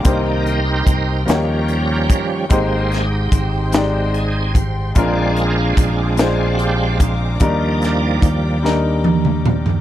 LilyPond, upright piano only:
<<
  \new Staff \with { instrumentName = "Upright piano" } { \time 6/8 \key ees \major \tempo 4. = 49 <bes d' ees' g' c''>4 r8 <bes ees' ges' g' des''>4 r8 | <aes ees' g' c''>4 r8 <aes ees' g' d''>4 r8 | <aes des' d' f' bes'>4 r8 <aes d' f' c''>4 r8 | <g d' ees' bes'>4 r8 <g d' ees' bes'>4 r8 | }
  \new Staff \with { instrumentName = "Upright piano" } { \clef bass \time 6/8 \key ees \major c4. ees4. | aes,4. r4. | bes,4. r4. | ees4. r4. | }
>>